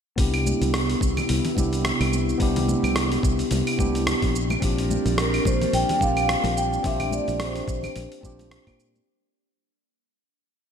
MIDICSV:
0, 0, Header, 1, 6, 480
1, 0, Start_track
1, 0, Key_signature, 0, "major"
1, 0, Tempo, 555556
1, 155, Time_signature, 4, 2, 24, 8
1, 9255, End_track
2, 0, Start_track
2, 0, Title_t, "Vibraphone"
2, 0, Program_c, 0, 11
2, 4492, Note_on_c, 0, 70, 86
2, 4725, Note_on_c, 0, 72, 91
2, 4730, Note_off_c, 0, 70, 0
2, 4959, Note_on_c, 0, 79, 111
2, 4967, Note_off_c, 0, 72, 0
2, 5194, Note_on_c, 0, 77, 96
2, 5204, Note_off_c, 0, 79, 0
2, 5678, Note_on_c, 0, 79, 100
2, 5689, Note_off_c, 0, 77, 0
2, 5899, Note_off_c, 0, 79, 0
2, 5923, Note_on_c, 0, 76, 100
2, 6165, Note_on_c, 0, 74, 91
2, 6166, Note_off_c, 0, 76, 0
2, 6383, Note_off_c, 0, 74, 0
2, 6404, Note_on_c, 0, 72, 82
2, 7565, Note_off_c, 0, 72, 0
2, 9255, End_track
3, 0, Start_track
3, 0, Title_t, "Tine electric piano"
3, 0, Program_c, 1, 4
3, 138, Note_on_c, 1, 59, 78
3, 150, Note_on_c, 1, 62, 73
3, 161, Note_on_c, 1, 64, 72
3, 175, Note_on_c, 1, 67, 90
3, 332, Control_c, 1, 64, 127
3, 1322, Note_off_c, 1, 59, 0
3, 1327, Note_off_c, 1, 62, 0
3, 1333, Note_off_c, 1, 64, 0
3, 1335, Note_on_c, 1, 59, 71
3, 1340, Note_off_c, 1, 67, 0
3, 1350, Note_on_c, 1, 62, 66
3, 1361, Note_on_c, 1, 64, 69
3, 1377, Note_on_c, 1, 67, 77
3, 2040, Note_off_c, 1, 59, 0
3, 2048, Note_off_c, 1, 62, 0
3, 2053, Note_off_c, 1, 64, 0
3, 2055, Note_on_c, 1, 59, 81
3, 2061, Note_off_c, 1, 67, 0
3, 2070, Note_on_c, 1, 62, 77
3, 2084, Note_on_c, 1, 64, 71
3, 2095, Note_on_c, 1, 67, 88
3, 3240, Note_off_c, 1, 59, 0
3, 3247, Note_off_c, 1, 62, 0
3, 3255, Note_off_c, 1, 64, 0
3, 3260, Note_off_c, 1, 67, 0
3, 3266, Note_on_c, 1, 59, 71
3, 3275, Note_on_c, 1, 62, 70
3, 3282, Note_on_c, 1, 64, 67
3, 3285, Note_on_c, 1, 67, 83
3, 3738, Note_off_c, 1, 59, 0
3, 3742, Note_off_c, 1, 62, 0
3, 3746, Note_off_c, 1, 64, 0
3, 3747, Note_off_c, 1, 67, 0
3, 3766, Control_c, 1, 64, 0
3, 3916, Control_c, 1, 64, 127
3, 3976, Note_on_c, 1, 60, 88
3, 3990, Note_on_c, 1, 62, 78
3, 4003, Note_on_c, 1, 65, 73
3, 4017, Note_on_c, 1, 67, 88
3, 5160, Note_off_c, 1, 60, 0
3, 5167, Note_off_c, 1, 62, 0
3, 5174, Note_off_c, 1, 65, 0
3, 5176, Note_on_c, 1, 60, 78
3, 5181, Note_off_c, 1, 67, 0
3, 5187, Note_on_c, 1, 62, 64
3, 5202, Note_on_c, 1, 65, 69
3, 5215, Note_on_c, 1, 67, 82
3, 5880, Note_off_c, 1, 60, 0
3, 5886, Note_off_c, 1, 62, 0
3, 5894, Note_off_c, 1, 65, 0
3, 5898, Note_on_c, 1, 60, 82
3, 5900, Note_off_c, 1, 67, 0
3, 5909, Note_on_c, 1, 62, 76
3, 5921, Note_on_c, 1, 65, 78
3, 5935, Note_on_c, 1, 67, 93
3, 7082, Note_off_c, 1, 60, 0
3, 7087, Note_off_c, 1, 62, 0
3, 7093, Note_off_c, 1, 65, 0
3, 7093, Note_on_c, 1, 60, 81
3, 7100, Note_off_c, 1, 67, 0
3, 7106, Note_on_c, 1, 62, 69
3, 7120, Note_on_c, 1, 65, 76
3, 7134, Note_on_c, 1, 67, 86
3, 7799, Note_off_c, 1, 60, 0
3, 7805, Note_off_c, 1, 62, 0
3, 7812, Note_off_c, 1, 65, 0
3, 7819, Note_off_c, 1, 67, 0
3, 7847, Control_c, 1, 64, 0
3, 9255, End_track
4, 0, Start_track
4, 0, Title_t, "Analog synth pad"
4, 0, Program_c, 2, 89
4, 148, Note_on_c, 2, 59, 66
4, 149, Note_on_c, 2, 64, 78
4, 151, Note_on_c, 2, 48, 74
4, 2052, Note_off_c, 2, 59, 0
4, 3717, Note_off_c, 2, 64, 0
4, 3718, Note_off_c, 2, 48, 0
4, 3739, Note_on_c, 2, 62, 84
4, 3741, Note_on_c, 2, 58, 70
4, 3743, Note_on_c, 2, 55, 76
4, 7792, Note_off_c, 2, 62, 0
4, 7793, Note_off_c, 2, 58, 0
4, 7794, Note_off_c, 2, 55, 0
4, 9255, End_track
5, 0, Start_track
5, 0, Title_t, "Fingered electric bass"
5, 0, Program_c, 3, 33
5, 154, Note_on_c, 3, 36, 90
5, 445, Note_off_c, 3, 36, 0
5, 530, Note_on_c, 3, 36, 73
5, 809, Note_off_c, 3, 36, 0
5, 874, Note_on_c, 3, 36, 82
5, 1033, Note_off_c, 3, 36, 0
5, 1121, Note_on_c, 3, 36, 79
5, 1201, Note_off_c, 3, 36, 0
5, 1355, Note_on_c, 3, 36, 70
5, 1646, Note_off_c, 3, 36, 0
5, 1731, Note_on_c, 3, 36, 93
5, 2010, Note_off_c, 3, 36, 0
5, 2075, Note_on_c, 3, 36, 92
5, 2365, Note_off_c, 3, 36, 0
5, 2447, Note_on_c, 3, 36, 76
5, 2728, Note_off_c, 3, 36, 0
5, 2793, Note_on_c, 3, 36, 86
5, 2953, Note_off_c, 3, 36, 0
5, 3033, Note_on_c, 3, 36, 80
5, 3117, Note_off_c, 3, 36, 0
5, 3274, Note_on_c, 3, 36, 71
5, 3565, Note_off_c, 3, 36, 0
5, 3649, Note_on_c, 3, 34, 88
5, 3929, Note_off_c, 3, 34, 0
5, 3994, Note_on_c, 3, 34, 97
5, 4285, Note_off_c, 3, 34, 0
5, 4368, Note_on_c, 3, 34, 83
5, 4648, Note_off_c, 3, 34, 0
5, 4712, Note_on_c, 3, 34, 86
5, 4872, Note_off_c, 3, 34, 0
5, 4951, Note_on_c, 3, 34, 77
5, 5036, Note_off_c, 3, 34, 0
5, 5194, Note_on_c, 3, 34, 78
5, 5485, Note_off_c, 3, 34, 0
5, 5563, Note_on_c, 3, 34, 97
5, 5845, Note_off_c, 3, 34, 0
5, 5913, Note_on_c, 3, 34, 97
5, 6205, Note_off_c, 3, 34, 0
5, 6289, Note_on_c, 3, 34, 86
5, 6568, Note_off_c, 3, 34, 0
5, 6632, Note_on_c, 3, 34, 88
5, 6792, Note_off_c, 3, 34, 0
5, 6879, Note_on_c, 3, 34, 81
5, 6960, Note_off_c, 3, 34, 0
5, 7114, Note_on_c, 3, 34, 73
5, 7405, Note_off_c, 3, 34, 0
5, 7490, Note_on_c, 3, 46, 94
5, 7769, Note_off_c, 3, 46, 0
5, 9255, End_track
6, 0, Start_track
6, 0, Title_t, "Drums"
6, 154, Note_on_c, 9, 36, 101
6, 155, Note_on_c, 9, 46, 66
6, 155, Note_on_c, 9, 62, 48
6, 163, Note_on_c, 9, 69, 39
6, 240, Note_off_c, 9, 36, 0
6, 241, Note_off_c, 9, 46, 0
6, 241, Note_off_c, 9, 62, 0
6, 250, Note_off_c, 9, 69, 0
6, 291, Note_on_c, 9, 46, 39
6, 291, Note_on_c, 9, 75, 68
6, 299, Note_on_c, 9, 69, 18
6, 377, Note_off_c, 9, 46, 0
6, 377, Note_off_c, 9, 75, 0
6, 385, Note_off_c, 9, 69, 0
6, 401, Note_on_c, 9, 63, 73
6, 403, Note_on_c, 9, 69, 71
6, 487, Note_off_c, 9, 63, 0
6, 490, Note_off_c, 9, 69, 0
6, 532, Note_on_c, 9, 46, 29
6, 536, Note_on_c, 9, 62, 60
6, 540, Note_on_c, 9, 69, 31
6, 618, Note_off_c, 9, 46, 0
6, 622, Note_off_c, 9, 62, 0
6, 626, Note_off_c, 9, 69, 0
6, 638, Note_on_c, 9, 37, 93
6, 638, Note_on_c, 9, 46, 64
6, 646, Note_on_c, 9, 69, 42
6, 724, Note_off_c, 9, 37, 0
6, 724, Note_off_c, 9, 46, 0
6, 733, Note_off_c, 9, 69, 0
6, 773, Note_on_c, 9, 46, 41
6, 782, Note_on_c, 9, 69, 21
6, 860, Note_off_c, 9, 46, 0
6, 868, Note_off_c, 9, 69, 0
6, 873, Note_on_c, 9, 36, 94
6, 884, Note_on_c, 9, 69, 71
6, 959, Note_off_c, 9, 36, 0
6, 970, Note_off_c, 9, 69, 0
6, 1011, Note_on_c, 9, 62, 45
6, 1011, Note_on_c, 9, 64, 74
6, 1012, Note_on_c, 9, 46, 29
6, 1012, Note_on_c, 9, 75, 71
6, 1020, Note_on_c, 9, 69, 31
6, 1098, Note_off_c, 9, 46, 0
6, 1098, Note_off_c, 9, 62, 0
6, 1098, Note_off_c, 9, 64, 0
6, 1098, Note_off_c, 9, 75, 0
6, 1107, Note_off_c, 9, 69, 0
6, 1114, Note_on_c, 9, 46, 64
6, 1123, Note_on_c, 9, 69, 39
6, 1201, Note_off_c, 9, 46, 0
6, 1209, Note_off_c, 9, 69, 0
6, 1249, Note_on_c, 9, 46, 42
6, 1253, Note_on_c, 9, 64, 81
6, 1258, Note_on_c, 9, 69, 20
6, 1336, Note_off_c, 9, 46, 0
6, 1340, Note_off_c, 9, 64, 0
6, 1344, Note_off_c, 9, 69, 0
6, 1354, Note_on_c, 9, 36, 57
6, 1358, Note_on_c, 9, 63, 57
6, 1363, Note_on_c, 9, 62, 71
6, 1365, Note_on_c, 9, 69, 74
6, 1440, Note_off_c, 9, 36, 0
6, 1445, Note_off_c, 9, 63, 0
6, 1449, Note_off_c, 9, 62, 0
6, 1451, Note_off_c, 9, 69, 0
6, 1492, Note_on_c, 9, 46, 32
6, 1500, Note_on_c, 9, 69, 32
6, 1578, Note_off_c, 9, 46, 0
6, 1587, Note_off_c, 9, 69, 0
6, 1596, Note_on_c, 9, 37, 94
6, 1596, Note_on_c, 9, 46, 60
6, 1605, Note_on_c, 9, 69, 38
6, 1683, Note_off_c, 9, 37, 0
6, 1683, Note_off_c, 9, 46, 0
6, 1691, Note_off_c, 9, 69, 0
6, 1734, Note_on_c, 9, 46, 46
6, 1734, Note_on_c, 9, 75, 77
6, 1742, Note_on_c, 9, 69, 20
6, 1820, Note_off_c, 9, 46, 0
6, 1820, Note_off_c, 9, 75, 0
6, 1829, Note_off_c, 9, 69, 0
6, 1841, Note_on_c, 9, 69, 71
6, 1844, Note_on_c, 9, 62, 47
6, 1927, Note_off_c, 9, 69, 0
6, 1930, Note_off_c, 9, 62, 0
6, 1979, Note_on_c, 9, 69, 30
6, 2065, Note_off_c, 9, 69, 0
6, 2073, Note_on_c, 9, 36, 99
6, 2075, Note_on_c, 9, 46, 64
6, 2084, Note_on_c, 9, 69, 42
6, 2159, Note_off_c, 9, 36, 0
6, 2162, Note_off_c, 9, 46, 0
6, 2170, Note_off_c, 9, 69, 0
6, 2213, Note_on_c, 9, 46, 41
6, 2218, Note_on_c, 9, 62, 73
6, 2218, Note_on_c, 9, 64, 73
6, 2222, Note_on_c, 9, 69, 20
6, 2300, Note_off_c, 9, 46, 0
6, 2304, Note_off_c, 9, 62, 0
6, 2304, Note_off_c, 9, 64, 0
6, 2308, Note_off_c, 9, 69, 0
6, 2319, Note_on_c, 9, 63, 86
6, 2323, Note_on_c, 9, 69, 74
6, 2405, Note_off_c, 9, 63, 0
6, 2410, Note_off_c, 9, 69, 0
6, 2454, Note_on_c, 9, 46, 29
6, 2454, Note_on_c, 9, 75, 74
6, 2462, Note_on_c, 9, 69, 31
6, 2540, Note_off_c, 9, 46, 0
6, 2540, Note_off_c, 9, 75, 0
6, 2549, Note_off_c, 9, 69, 0
6, 2555, Note_on_c, 9, 37, 95
6, 2555, Note_on_c, 9, 46, 64
6, 2563, Note_on_c, 9, 69, 43
6, 2642, Note_off_c, 9, 37, 0
6, 2642, Note_off_c, 9, 46, 0
6, 2650, Note_off_c, 9, 69, 0
6, 2693, Note_on_c, 9, 46, 40
6, 2695, Note_on_c, 9, 62, 50
6, 2701, Note_on_c, 9, 69, 21
6, 2779, Note_off_c, 9, 46, 0
6, 2781, Note_off_c, 9, 62, 0
6, 2787, Note_off_c, 9, 69, 0
6, 2793, Note_on_c, 9, 36, 104
6, 2802, Note_on_c, 9, 69, 77
6, 2879, Note_off_c, 9, 36, 0
6, 2888, Note_off_c, 9, 69, 0
6, 2929, Note_on_c, 9, 46, 30
6, 2938, Note_on_c, 9, 69, 33
6, 3016, Note_off_c, 9, 46, 0
6, 3024, Note_off_c, 9, 69, 0
6, 3030, Note_on_c, 9, 46, 62
6, 3039, Note_on_c, 9, 69, 43
6, 3042, Note_on_c, 9, 62, 75
6, 3117, Note_off_c, 9, 46, 0
6, 3125, Note_off_c, 9, 69, 0
6, 3129, Note_off_c, 9, 62, 0
6, 3171, Note_on_c, 9, 46, 44
6, 3171, Note_on_c, 9, 75, 71
6, 3179, Note_on_c, 9, 69, 21
6, 3258, Note_off_c, 9, 46, 0
6, 3258, Note_off_c, 9, 75, 0
6, 3266, Note_off_c, 9, 69, 0
6, 3273, Note_on_c, 9, 36, 60
6, 3275, Note_on_c, 9, 63, 61
6, 3283, Note_on_c, 9, 69, 77
6, 3360, Note_off_c, 9, 36, 0
6, 3362, Note_off_c, 9, 63, 0
6, 3369, Note_off_c, 9, 69, 0
6, 3414, Note_on_c, 9, 46, 33
6, 3422, Note_on_c, 9, 69, 36
6, 3500, Note_off_c, 9, 46, 0
6, 3509, Note_off_c, 9, 69, 0
6, 3516, Note_on_c, 9, 37, 93
6, 3516, Note_on_c, 9, 46, 60
6, 3517, Note_on_c, 9, 62, 50
6, 3524, Note_on_c, 9, 69, 42
6, 3602, Note_off_c, 9, 37, 0
6, 3602, Note_off_c, 9, 46, 0
6, 3603, Note_off_c, 9, 62, 0
6, 3610, Note_off_c, 9, 69, 0
6, 3649, Note_on_c, 9, 36, 62
6, 3650, Note_on_c, 9, 46, 44
6, 3658, Note_on_c, 9, 69, 23
6, 3736, Note_off_c, 9, 36, 0
6, 3736, Note_off_c, 9, 46, 0
6, 3744, Note_off_c, 9, 69, 0
6, 3763, Note_on_c, 9, 69, 73
6, 3849, Note_off_c, 9, 69, 0
6, 3890, Note_on_c, 9, 62, 74
6, 3892, Note_on_c, 9, 75, 68
6, 3900, Note_on_c, 9, 69, 30
6, 3976, Note_off_c, 9, 62, 0
6, 3978, Note_off_c, 9, 75, 0
6, 3987, Note_off_c, 9, 69, 0
6, 3993, Note_on_c, 9, 36, 108
6, 3993, Note_on_c, 9, 46, 62
6, 4001, Note_on_c, 9, 69, 46
6, 4079, Note_off_c, 9, 36, 0
6, 4079, Note_off_c, 9, 46, 0
6, 4088, Note_off_c, 9, 69, 0
6, 4134, Note_on_c, 9, 46, 39
6, 4142, Note_on_c, 9, 69, 21
6, 4220, Note_off_c, 9, 46, 0
6, 4229, Note_off_c, 9, 69, 0
6, 4239, Note_on_c, 9, 63, 84
6, 4240, Note_on_c, 9, 69, 75
6, 4325, Note_off_c, 9, 63, 0
6, 4326, Note_off_c, 9, 69, 0
6, 4369, Note_on_c, 9, 46, 28
6, 4377, Note_on_c, 9, 69, 32
6, 4379, Note_on_c, 9, 62, 47
6, 4455, Note_off_c, 9, 46, 0
6, 4464, Note_off_c, 9, 69, 0
6, 4466, Note_off_c, 9, 62, 0
6, 4475, Note_on_c, 9, 37, 101
6, 4475, Note_on_c, 9, 46, 64
6, 4484, Note_on_c, 9, 69, 46
6, 4562, Note_off_c, 9, 37, 0
6, 4562, Note_off_c, 9, 46, 0
6, 4570, Note_off_c, 9, 69, 0
6, 4613, Note_on_c, 9, 46, 40
6, 4613, Note_on_c, 9, 75, 70
6, 4621, Note_on_c, 9, 69, 22
6, 4699, Note_off_c, 9, 46, 0
6, 4699, Note_off_c, 9, 75, 0
6, 4708, Note_off_c, 9, 69, 0
6, 4712, Note_on_c, 9, 36, 110
6, 4715, Note_on_c, 9, 62, 74
6, 4722, Note_on_c, 9, 69, 78
6, 4798, Note_off_c, 9, 36, 0
6, 4801, Note_off_c, 9, 62, 0
6, 4809, Note_off_c, 9, 69, 0
6, 4850, Note_on_c, 9, 64, 75
6, 4851, Note_on_c, 9, 46, 29
6, 4860, Note_on_c, 9, 69, 32
6, 4937, Note_off_c, 9, 64, 0
6, 4938, Note_off_c, 9, 46, 0
6, 4946, Note_off_c, 9, 69, 0
6, 4955, Note_on_c, 9, 46, 61
6, 4963, Note_on_c, 9, 69, 42
6, 5041, Note_off_c, 9, 46, 0
6, 5049, Note_off_c, 9, 69, 0
6, 5092, Note_on_c, 9, 46, 42
6, 5095, Note_on_c, 9, 64, 79
6, 5100, Note_on_c, 9, 69, 21
6, 5178, Note_off_c, 9, 46, 0
6, 5182, Note_off_c, 9, 64, 0
6, 5184, Note_on_c, 9, 62, 44
6, 5186, Note_off_c, 9, 69, 0
6, 5192, Note_on_c, 9, 36, 65
6, 5194, Note_on_c, 9, 63, 56
6, 5200, Note_on_c, 9, 69, 79
6, 5271, Note_off_c, 9, 62, 0
6, 5279, Note_off_c, 9, 36, 0
6, 5281, Note_off_c, 9, 63, 0
6, 5286, Note_off_c, 9, 69, 0
6, 5328, Note_on_c, 9, 46, 28
6, 5328, Note_on_c, 9, 75, 77
6, 5337, Note_on_c, 9, 69, 35
6, 5415, Note_off_c, 9, 46, 0
6, 5415, Note_off_c, 9, 75, 0
6, 5423, Note_off_c, 9, 69, 0
6, 5435, Note_on_c, 9, 37, 91
6, 5435, Note_on_c, 9, 46, 59
6, 5444, Note_on_c, 9, 69, 44
6, 5522, Note_off_c, 9, 37, 0
6, 5522, Note_off_c, 9, 46, 0
6, 5530, Note_off_c, 9, 69, 0
6, 5561, Note_on_c, 9, 62, 76
6, 5569, Note_on_c, 9, 46, 42
6, 5577, Note_on_c, 9, 69, 23
6, 5648, Note_off_c, 9, 62, 0
6, 5655, Note_off_c, 9, 46, 0
6, 5664, Note_off_c, 9, 69, 0
6, 5679, Note_on_c, 9, 69, 75
6, 5766, Note_off_c, 9, 69, 0
6, 5816, Note_on_c, 9, 69, 35
6, 5902, Note_off_c, 9, 69, 0
6, 5911, Note_on_c, 9, 46, 61
6, 5912, Note_on_c, 9, 36, 108
6, 5919, Note_on_c, 9, 69, 47
6, 5997, Note_off_c, 9, 46, 0
6, 5998, Note_off_c, 9, 36, 0
6, 6006, Note_off_c, 9, 69, 0
6, 6047, Note_on_c, 9, 46, 41
6, 6047, Note_on_c, 9, 75, 72
6, 6049, Note_on_c, 9, 64, 78
6, 6052, Note_on_c, 9, 62, 46
6, 6055, Note_on_c, 9, 69, 21
6, 6133, Note_off_c, 9, 46, 0
6, 6133, Note_off_c, 9, 75, 0
6, 6136, Note_off_c, 9, 64, 0
6, 6138, Note_off_c, 9, 62, 0
6, 6141, Note_off_c, 9, 69, 0
6, 6145, Note_on_c, 9, 63, 93
6, 6158, Note_on_c, 9, 69, 79
6, 6232, Note_off_c, 9, 63, 0
6, 6244, Note_off_c, 9, 69, 0
6, 6288, Note_on_c, 9, 46, 28
6, 6296, Note_on_c, 9, 69, 32
6, 6374, Note_off_c, 9, 46, 0
6, 6382, Note_off_c, 9, 69, 0
6, 6387, Note_on_c, 9, 62, 71
6, 6391, Note_on_c, 9, 37, 101
6, 6391, Note_on_c, 9, 46, 65
6, 6399, Note_on_c, 9, 69, 46
6, 6473, Note_off_c, 9, 62, 0
6, 6477, Note_off_c, 9, 37, 0
6, 6477, Note_off_c, 9, 46, 0
6, 6486, Note_off_c, 9, 69, 0
6, 6528, Note_on_c, 9, 46, 41
6, 6536, Note_on_c, 9, 69, 22
6, 6614, Note_off_c, 9, 46, 0
6, 6623, Note_off_c, 9, 69, 0
6, 6632, Note_on_c, 9, 36, 108
6, 6640, Note_on_c, 9, 69, 76
6, 6719, Note_off_c, 9, 36, 0
6, 6726, Note_off_c, 9, 69, 0
6, 6766, Note_on_c, 9, 64, 78
6, 6771, Note_on_c, 9, 46, 26
6, 6771, Note_on_c, 9, 75, 72
6, 6780, Note_on_c, 9, 69, 32
6, 6853, Note_off_c, 9, 64, 0
6, 6858, Note_off_c, 9, 46, 0
6, 6858, Note_off_c, 9, 75, 0
6, 6866, Note_off_c, 9, 69, 0
6, 6874, Note_on_c, 9, 46, 56
6, 6876, Note_on_c, 9, 62, 53
6, 6882, Note_on_c, 9, 69, 44
6, 6960, Note_off_c, 9, 46, 0
6, 6963, Note_off_c, 9, 62, 0
6, 6969, Note_off_c, 9, 69, 0
6, 7013, Note_on_c, 9, 46, 43
6, 7021, Note_on_c, 9, 69, 23
6, 7099, Note_off_c, 9, 46, 0
6, 7108, Note_off_c, 9, 69, 0
6, 7113, Note_on_c, 9, 63, 62
6, 7114, Note_on_c, 9, 36, 64
6, 7123, Note_on_c, 9, 69, 75
6, 7199, Note_off_c, 9, 63, 0
6, 7200, Note_off_c, 9, 36, 0
6, 7209, Note_off_c, 9, 69, 0
6, 7250, Note_on_c, 9, 62, 69
6, 7253, Note_on_c, 9, 46, 28
6, 7261, Note_on_c, 9, 69, 34
6, 7337, Note_off_c, 9, 62, 0
6, 7339, Note_off_c, 9, 46, 0
6, 7348, Note_off_c, 9, 69, 0
6, 7356, Note_on_c, 9, 37, 90
6, 7356, Note_on_c, 9, 46, 60
6, 7365, Note_on_c, 9, 69, 39
6, 7443, Note_off_c, 9, 37, 0
6, 7443, Note_off_c, 9, 46, 0
6, 7451, Note_off_c, 9, 69, 0
6, 7491, Note_on_c, 9, 36, 58
6, 7492, Note_on_c, 9, 46, 40
6, 7492, Note_on_c, 9, 75, 76
6, 7500, Note_on_c, 9, 69, 22
6, 7578, Note_off_c, 9, 36, 0
6, 7578, Note_off_c, 9, 46, 0
6, 7578, Note_off_c, 9, 75, 0
6, 7587, Note_off_c, 9, 69, 0
6, 7602, Note_on_c, 9, 69, 82
6, 7688, Note_off_c, 9, 69, 0
6, 7735, Note_on_c, 9, 62, 51
6, 7737, Note_on_c, 9, 69, 32
6, 7822, Note_off_c, 9, 62, 0
6, 7823, Note_off_c, 9, 69, 0
6, 9255, End_track
0, 0, End_of_file